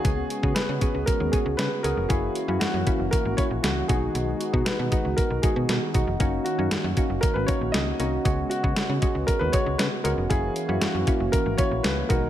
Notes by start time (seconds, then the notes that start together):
Already playing: G#4
0.04 C#2 C#3 G#3 B3 C#4 F#4 G#4, kick, closed hi-hat
0.30 closed hi-hat
0.43 C#3 B3 C#4 F#4 G#4, kick
0.55 B4, snare, closed hi-hat
0.69 C#3
0.81 B3 C#4 F#4 G#4, kick, closed hi-hat
0.95 C#2
1.06 A#4, kick, closed hi-hat
1.20 D#2
1.32 B3 C#4 F#4 G#4, kick, closed hi-hat
1.46 C#2
1.57 C#3 B4, snare, closed hi-hat
1.83 C#2 B3 C#4 F#4 G#4 A#4, closed hi-hat
1.97 F1
2.09 F#1 E3 A#3 C#4 E4 F#4 G#4, kick, closed hi-hat
2.35 closed hi-hat
2.48 F#2 A#3 C#4 E4 F#4
2.60 F#2 F#4, snare, closed hi-hat
2.74 F#2
2.86 A#3 C#4 E4 F#4, kick, closed hi-hat
3.00 F#1
3.11 A#4, kick, closed hi-hat
3.25 G#1
3.37 A#3 C#4 E4 F#4 C#5, kick, closed hi-hat
3.51 A#1
3.63 C#2 F#4, snare, closed hi-hat
3.88 B1 D#3 G#3 B3 D#4 F#4 G#4, kick, closed hi-hat
4.15 B1, closed hi-hat
4.41 closed hi-hat
4.53 B2 G#3 B3 D#4 F#4, kick
4.65 B4, snare, closed hi-hat
4.79 B2
4.91 G#3 B3 D#4 F#4, kick, closed hi-hat
5.05 C#2
5.17 A#4, kick, closed hi-hat
5.30 B1
5.42 G#3 B3 D#4 F#4 G#4, kick, closed hi-hat
5.56 B2
5.69 B2, snare, closed hi-hat
5.94 B1 G#3 B3 D#4 F#4, kick, closed hi-hat
6.07 F1
6.20 F#1 A#3 C#4 D#4 F#4, kick, closed hi-hat
6.44 F#4, closed hi-hat
6.58 F#2 A#3 C#4 D#4 F#4
6.71 F#2, snare, closed hi-hat
6.84 F#2
6.97 A#3 C#4 D#4 F#4, kick, closed hi-hat
7.10 F#1
7.21 A#4, kick, closed hi-hat
7.34 G#1 B4
7.47 A#3 C#4 D#4 F#4 C#5, kick, closed hi-hat
7.61 A#1
7.72 C#2 D#5, snare, closed hi-hat
7.99 C2 A#3 C#4 D#4 F#4, closed hi-hat
8.25 C#2 C#3 G#3 B3 C#4 F#4, kick, closed hi-hat
8.50 F#4, closed hi-hat
8.63 C#3 G#3 B3 C#4 F#4, kick
8.76 snare, closed hi-hat
8.89 C#3
9.02 G#3 B3 C#4 F#4, kick, closed hi-hat
9.15 C#2
9.27 A#4, kick, closed hi-hat
9.39 D#2 B4
9.53 G#3 B3 C#4 F#4 C#5, kick, closed hi-hat
9.66 C#2
9.78 C#3 B4, snare, closed hi-hat
10.04 C#2 G#3 B3 C#4 F#4 A#4, closed hi-hat
10.18 F1
10.30 F#1 E3 A#3 C#4 E4 F#4 G#4, kick, closed hi-hat
10.56 closed hi-hat
10.68 F#2 A#3 C#4 E4 F#4
10.81 F#2 F#4, snare, closed hi-hat
10.95 F#2
11.07 A#3 C#4 E4 F#4, kick, closed hi-hat
11.20 F#1
11.32 A#4, kick, closed hi-hat
11.46 G#1
11.58 A#3 C#4 E4 F#4 C#5, kick, closed hi-hat
11.71 A#1
11.83 C#2 B4, snare, closed hi-hat
12.09 B1 D#3 G#3 B3 D#4 F#4 A#4, kick, closed hi-hat